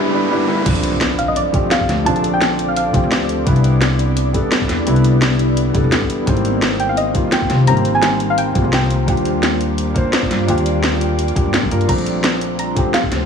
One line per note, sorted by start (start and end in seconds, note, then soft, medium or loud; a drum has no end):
0.00 0.12 G3 loud
0.00 0.13 B3 medium
0.00 0.14 D4 medium
0.00 0.15 E4 loud
0.00 riser medium
0.12 0.28 G3 loud
0.12 0.29 B3 medium
0.12 0.29 D4 medium
0.12 0.30 E4 loud
0.29 0.45 G3 loud
0.29 0.46 B3 medium
0.29 0.47 D4 medium
0.29 0.48 E4 loud
0.47 0.64 G3 loud
0.47 0.64 B3 medium
0.47 0.65 D4 medium
0.47 0.65 E4 loud
0.64 1.52 A#1 loud
0.64 1.51 F3 loud
0.64 1.51 A3 medium
0.64 3.44 C4 medium
0.64 1.52 C4 medium
0.64 1.52 D4 loud
0.64 3.44 A4 medium
0.64 6.23 D5 medium
0.64 kick loud
0.64 closed hi-hat loud
0.64 crash loud
0.64 impact medium
0.75 closed hi-hat soft
0.83 closed hi-hat medium
1.01 snare loud
1.01 closed hi-hat loud
1.18 1.28 F5 medium
1.18 closed hi-hat medium
1.28 1.36 D#5 medium
1.36 1.72 D5 medium
1.36 closed hi-hat loud
1.52 2.03 F3 medium
1.52 2.04 A3 medium
1.52 2.05 C4 medium
1.52 2.05 G4 loud
1.52 kick loud
1.52 closed hi-hat medium
1.71 2.04 F5 loud
1.71 snare loud
1.71 closed hi-hat loud
1.81 kick medium
1.89 2.05 D2 medium
1.89 snare soft
1.89 closed hi-hat medium
2.05 2.93 A#1 loud
2.05 2.91 F3 loud
2.05 2.92 A3 medium
2.05 2.92 C4 medium
2.05 2.93 D4 loud
2.05 2.34 A5 loud
2.05 closed hi-hat loud
2.16 closed hi-hat soft
2.24 closed hi-hat medium
2.34 2.69 G5 loud
2.42 snare loud
2.42 closed hi-hat loud
2.59 closed hi-hat medium
2.68 2.76 F5 medium
2.76 3.13 F5 loud
2.76 closed hi-hat loud
2.93 3.02 A#1 loud
2.93 3.44 F3 medium
2.93 3.44 A3 medium
2.93 3.45 C4 medium
2.93 3.45 G4 loud
2.93 kick loud
2.93 closed hi-hat medium
3.03 3.45 D2 medium
3.12 4.13 D5 medium
3.12 snare loud
3.12 closed hi-hat loud
3.29 closed hi-hat medium
3.45 4.33 C2 loud
3.45 4.31 G3 loud
3.45 4.32 B3 medium
3.45 6.25 B3 medium
3.45 4.33 D4 medium
3.45 6.25 E4 medium
3.45 4.33 E4 loud
3.45 kick loud
3.45 closed hi-hat loud
3.56 closed hi-hat soft
3.64 closed hi-hat medium
3.82 snare loud
3.82 closed hi-hat loud
3.99 closed hi-hat medium
4.17 closed hi-hat loud
4.33 4.84 G3 medium
4.33 4.85 B3 medium
4.33 4.85 D4 medium
4.33 4.86 A4 loud
4.33 kick loud
4.33 closed hi-hat medium
4.52 snare loud
4.52 closed hi-hat loud
4.61 kick medium
4.69 4.85 E2 medium
4.69 snare soft
4.69 closed hi-hat medium
4.86 5.73 C2 loud
4.86 5.72 G3 medium
4.86 5.72 B3 medium
4.86 5.73 D4 medium
4.86 5.74 E4 loud
4.86 closed hi-hat medium
4.96 closed hi-hat soft
5.04 closed hi-hat medium
5.22 snare loud
5.22 closed hi-hat medium
5.39 closed hi-hat medium
5.57 closed hi-hat medium
5.73 5.83 C2 loud
5.73 6.25 G3 medium
5.73 6.25 B3 medium
5.73 6.26 D4 medium
5.73 6.26 A4 loud
5.73 kick loud
5.73 closed hi-hat medium
5.84 6.26 E2 medium
5.92 snare loud
5.92 closed hi-hat medium
6.02 kick medium
6.10 closed hi-hat medium
6.26 7.14 G#1 loud
6.26 7.12 D#3 medium
6.26 7.13 G3 medium
6.26 9.05 G3 medium
6.26 9.05 A#3 medium
6.26 7.13 A#3 medium
6.26 7.14 C4 loud
6.26 9.05 C5 medium
6.26 kick loud
6.26 closed hi-hat medium
6.37 closed hi-hat soft
6.45 closed hi-hat medium
6.62 snare loud
6.62 closed hi-hat medium
6.80 6.90 G5 loud
6.80 closed hi-hat medium
6.89 6.98 F5 medium
6.97 7.34 D#5 medium
6.97 closed hi-hat medium
7.13 7.64 D#3 medium
7.13 7.65 G3 medium
7.13 7.66 A#3 medium
7.13 7.66 F4 loud
7.13 kick loud
7.13 closed hi-hat medium
7.32 7.69 G5 loud
7.32 snare loud
7.32 closed hi-hat medium
7.42 kick medium
7.50 7.66 C2 medium
7.50 snare soft
7.50 closed hi-hat medium
7.66 8.54 G#1 loud
7.66 8.52 D#3 medium
7.66 8.53 G3 medium
7.66 8.54 A#3 medium
7.66 8.54 C4 loud
7.66 7.95 A#5 loud
7.66 closed hi-hat medium
7.77 closed hi-hat soft
7.85 closed hi-hat medium
7.95 8.31 G#5 loud
8.03 snare loud
8.03 closed hi-hat medium
8.20 closed hi-hat medium
8.30 8.37 F5 medium
8.38 8.73 G5 loud
8.38 closed hi-hat medium
8.54 8.64 G#1 loud
8.54 9.05 D#3 medium
8.54 9.06 G3 medium
8.54 9.05 A#3 medium
8.54 9.07 F4 loud
8.54 kick loud
8.54 closed hi-hat medium
8.65 9.07 C2 medium
8.73 9.75 G5 medium
8.73 snare loud
8.73 closed hi-hat medium
8.90 closed hi-hat medium
9.06 9.94 D#2 loud
9.06 11.86 G3 medium
9.06 9.93 A#3 medium
9.06 9.93 D4 medium
9.06 11.86 F4 medium
9.06 9.94 F4 medium
9.06 9.94 G4 loud
9.06 11.86 D5 medium
9.06 kick loud
9.06 closed hi-hat medium
9.17 closed hi-hat soft
9.25 closed hi-hat medium
9.43 snare loud
9.43 closed hi-hat medium
9.61 closed hi-hat medium
9.78 closed hi-hat medium
9.94 10.45 A#3 medium
9.94 10.46 D4 medium
9.94 10.47 F4 medium
9.94 10.47 C5 loud
9.94 kick loud
9.94 closed hi-hat medium
10.13 snare loud
10.13 closed hi-hat medium
10.23 kick medium
10.31 10.47 G2 medium
10.31 snare soft
10.31 closed hi-hat medium
10.47 11.35 D#2 loud
10.47 11.33 A#3 medium
10.47 11.34 D4 medium
10.47 11.34 F4 medium
10.47 11.35 G4 loud
10.47 closed hi-hat medium
10.58 closed hi-hat soft
10.66 closed hi-hat medium
10.84 snare loud
10.84 closed hi-hat loud
11.01 closed hi-hat medium
11.19 closed hi-hat medium
11.28 closed hi-hat soft
11.35 11.45 D#2 loud
11.35 11.69 A#3 medium
11.35 11.69 D4 medium
11.35 11.69 F4 medium
11.35 11.70 G4 medium
11.35 kick loud
11.35 closed hi-hat medium
11.45 11.62 G2 medium
11.54 snare loud
11.54 closed hi-hat medium
11.63 11.70 G2 loud
11.63 kick medium
11.71 11.87 G2 medium
11.71 11.86 A#3 medium
11.71 11.87 D4 medium
11.71 11.87 F4 medium
11.71 11.87 A#4 medium
11.71 closed hi-hat medium
11.81 closed hi-hat soft
11.87 12.75 A#1 loud
11.87 12.73 F3 medium
11.87 12.74 A3 medium
11.87 13.26 A3 medium
11.87 12.75 C4 medium
11.87 13.26 D4 medium
11.87 12.75 D4 loud
11.87 13.26 C5 medium
11.87 12.55 A#5 loud
11.87 kick loud
11.87 closed hi-hat loud
11.87 crash medium
11.98 closed hi-hat soft
12.06 closed hi-hat medium
12.24 snare loud
12.24 closed hi-hat loud
12.41 closed hi-hat medium
12.59 12.95 A#5 medium
12.59 closed hi-hat loud
12.75 13.26 F3 medium
12.75 13.26 A3 medium
12.75 13.26 C4 medium
12.75 13.26 G4 loud
12.75 kick loud
12.75 closed hi-hat medium
12.94 13.26 F5 medium
12.94 snare loud
12.94 closed hi-hat loud
13.03 kick medium
13.11 13.26 D2 loud
13.11 snare soft
13.11 closed hi-hat medium